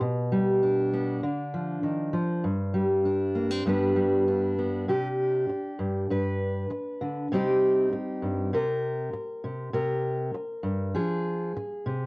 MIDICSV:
0, 0, Header, 1, 3, 480
1, 0, Start_track
1, 0, Key_signature, -3, "minor"
1, 0, Tempo, 606673
1, 11, Time_signature, 4, 2, 24, 8
1, 9544, End_track
2, 0, Start_track
2, 0, Title_t, "Steel-string acoustic guitar"
2, 0, Program_c, 0, 25
2, 5, Note_on_c, 0, 47, 63
2, 253, Note_on_c, 0, 55, 53
2, 498, Note_on_c, 0, 62, 51
2, 739, Note_on_c, 0, 59, 49
2, 943, Note_off_c, 0, 47, 0
2, 946, Note_off_c, 0, 55, 0
2, 949, Note_off_c, 0, 59, 0
2, 974, Note_on_c, 0, 50, 62
2, 1216, Note_on_c, 0, 53, 52
2, 1443, Note_off_c, 0, 50, 0
2, 1447, Note_on_c, 0, 51, 47
2, 1675, Note_off_c, 0, 53, 0
2, 1685, Note_on_c, 0, 53, 52
2, 1692, Note_off_c, 0, 51, 0
2, 1930, Note_on_c, 0, 43, 59
2, 1932, Note_off_c, 0, 53, 0
2, 2168, Note_on_c, 0, 55, 52
2, 2406, Note_off_c, 0, 62, 0
2, 2416, Note_on_c, 0, 62, 45
2, 2652, Note_on_c, 0, 58, 46
2, 2775, Note_off_c, 0, 58, 0
2, 2775, Note_on_c, 0, 60, 41
2, 2866, Note_off_c, 0, 55, 0
2, 2884, Note_off_c, 0, 43, 0
2, 2893, Note_on_c, 0, 43, 56
2, 2898, Note_off_c, 0, 60, 0
2, 2899, Note_off_c, 0, 62, 0
2, 2901, Note_on_c, 0, 55, 49
2, 2906, Note_on_c, 0, 59, 49
2, 2914, Note_on_c, 0, 62, 46
2, 2919, Note_on_c, 0, 71, 52
2, 3124, Note_off_c, 0, 55, 0
2, 3134, Note_on_c, 0, 55, 53
2, 3378, Note_off_c, 0, 62, 0
2, 3388, Note_on_c, 0, 62, 46
2, 3620, Note_off_c, 0, 59, 0
2, 3629, Note_on_c, 0, 59, 45
2, 3830, Note_off_c, 0, 55, 0
2, 3837, Note_off_c, 0, 59, 0
2, 3842, Note_off_c, 0, 71, 0
2, 3859, Note_off_c, 0, 43, 0
2, 3864, Note_on_c, 0, 48, 56
2, 3872, Note_on_c, 0, 67, 56
2, 4336, Note_off_c, 0, 48, 0
2, 4580, Note_on_c, 0, 43, 54
2, 4819, Note_off_c, 0, 43, 0
2, 4828, Note_off_c, 0, 67, 0
2, 4829, Note_on_c, 0, 43, 59
2, 4834, Note_on_c, 0, 71, 55
2, 5293, Note_off_c, 0, 43, 0
2, 5547, Note_on_c, 0, 50, 54
2, 5756, Note_off_c, 0, 50, 0
2, 5759, Note_off_c, 0, 71, 0
2, 5785, Note_off_c, 0, 62, 0
2, 5791, Note_on_c, 0, 48, 61
2, 5796, Note_on_c, 0, 55, 50
2, 5800, Note_on_c, 0, 60, 54
2, 5809, Note_on_c, 0, 63, 52
2, 5813, Note_on_c, 0, 67, 57
2, 6263, Note_off_c, 0, 48, 0
2, 6507, Note_on_c, 0, 43, 53
2, 6719, Note_off_c, 0, 55, 0
2, 6726, Note_off_c, 0, 63, 0
2, 6744, Note_off_c, 0, 43, 0
2, 6751, Note_on_c, 0, 48, 65
2, 6755, Note_off_c, 0, 67, 0
2, 6762, Note_on_c, 0, 70, 59
2, 6785, Note_off_c, 0, 60, 0
2, 7216, Note_off_c, 0, 48, 0
2, 7466, Note_on_c, 0, 48, 56
2, 7680, Note_off_c, 0, 70, 0
2, 7689, Note_off_c, 0, 48, 0
2, 7698, Note_on_c, 0, 48, 67
2, 7705, Note_on_c, 0, 70, 63
2, 8176, Note_off_c, 0, 48, 0
2, 8409, Note_on_c, 0, 43, 55
2, 8629, Note_off_c, 0, 70, 0
2, 8651, Note_off_c, 0, 43, 0
2, 8659, Note_on_c, 0, 53, 68
2, 8667, Note_on_c, 0, 68, 57
2, 9134, Note_off_c, 0, 53, 0
2, 9381, Note_on_c, 0, 48, 58
2, 9544, Note_off_c, 0, 48, 0
2, 9544, Note_off_c, 0, 68, 0
2, 9544, End_track
3, 0, Start_track
3, 0, Title_t, "Muted steel-string acoustic guitar strokes"
3, 4344, Note_on_c, 9, 29, 52
3, 4424, Note_off_c, 9, 29, 0
3, 5303, Note_on_c, 9, 29, 56
3, 5382, Note_off_c, 9, 29, 0
3, 6273, Note_on_c, 9, 29, 61
3, 6352, Note_off_c, 9, 29, 0
3, 7225, Note_on_c, 9, 29, 61
3, 7304, Note_off_c, 9, 29, 0
3, 8181, Note_on_c, 9, 29, 62
3, 8260, Note_off_c, 9, 29, 0
3, 9149, Note_on_c, 9, 29, 56
3, 9228, Note_off_c, 9, 29, 0
3, 9544, End_track
0, 0, End_of_file